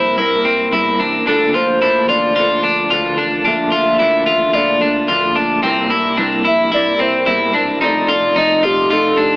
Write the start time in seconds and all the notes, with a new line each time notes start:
Already playing: A#1 C3 G3 A#3 E4 A#4 C5
0.16 C2 G3 A#3 E4 A#4
0.21 A#4
0.43 C2 C4 E4 A#4
0.49 A#3
0.71 E2 C3 G3 A#3 E4 A#4
0.98 A1 D4 E4 A#4
1.03 A#3
1.25 A#1 A#2 D3 F3 A3 A#3 D4 F4 A4
1.53 A#3 D4 F4 A4 C5
1.58 F3
1.68 A#1
1.80 A#1 A#2 D3 F3 A#3 D4 E4 A4
2.08 A1 A#3 D4 F4 A4 D5
2.13 F3
2.35 A#1 F3 A#3 D4 F4
2.40 A4
2.62 A#1 A#3 D4 A4
2.68 F3
2.90 D2 A#2 D3 F3 A#3 D4 F4 A4
3.17 A1 A#3 D4 A4
3.22 F3
3.44 A#1 A#2 D3 F3 A#3 D4 A4 E5
3.72 A#3 D4 F4 A4
3.77 F3
3.86 A#1
3.99 A#1 A#2 D3 F3 A#3 D4 E4 A4
4.26 A1 A#3 D4 F4 A4
4.31 F3
4.53 A#1 F3 A#3 D4 F4 D5
4.58 A4
4.80 A#1 A#3 D4 A4
4.85 F3
5.08 D2 A#2 D3 F3 A#3 D4 F4 A4
5.35 A#1 A#3 D4 A4
5.40 F3
5.62 C2 C3 G3 A#3 C4 E4 A#4
5.90 E4 A#4
5.95 A#3
6.04 C2
6.17 C2 C3 G3 A#3 D4 E4 A#4
6.44 A#1 E4 A#4 E5
6.49 A#3
6.71 C2 G3 A#3 E4 D5
6.76 A#4
6.98 C2 C4 E4 A#4 C5
7.03 A#3
7.25 E2 C3 G3 A#3 E4 A#4
7.52 E1 D4 E4 A#4
7.58 A#3
7.80 F1 F3 A3 C4 D#4 A4 D5
8.07 D#4 F4 A4
8.12 C4
8.22 F1
8.35 F1 F3 C4 D#4 A4 D#5
8.63 D#1 D#4 F4 G4
8.67 C4
8.89 F1 F3 C4 D#4 F4 A4
8.94 A4
9.16 F1 D4 D#4 A4
9.21 C4